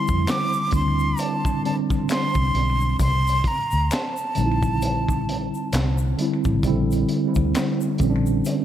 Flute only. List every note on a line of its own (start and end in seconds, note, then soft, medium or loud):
0.00 0.31 C6 medium
0.30 0.74 D6 loud
0.75 1.22 C6 medium
1.20 1.64 A5 medium
1.66 1.76 A5 medium
2.11 2.97 C6 medium
3.02 3.49 C6 loud
3.47 3.94 A#5 medium
3.93 5.73 A5 medium